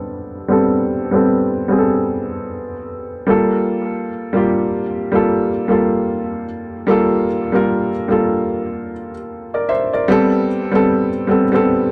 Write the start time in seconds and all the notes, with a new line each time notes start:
Already playing: G3 B3 C4 D4 A4
0.48 G3 B3 C4 A4
1.11 G3 B3 C4 A4
1.68 G3 B3 C4 G#4
1.78 A4
3.27 G3 A#3 F4 A4
4.33 G3 A#3 F4 G4
5.12 G3 A#3 F4 A4
5.68 G3 A#3 F4 A4
6.87 G3 A#3 F4 A4
7.52 G3 A#3 F4 A#4
8.08 G3 A#3 F4 A4
9.54 A#4 D5
9.69 C5 E5
9.93 A#4 D5
10.08 G3 B3 C4 A4
10.71 G3 B3 C4 A4
11.27 G3 B3 C4 A4
11.52 G3 B3 C4 A4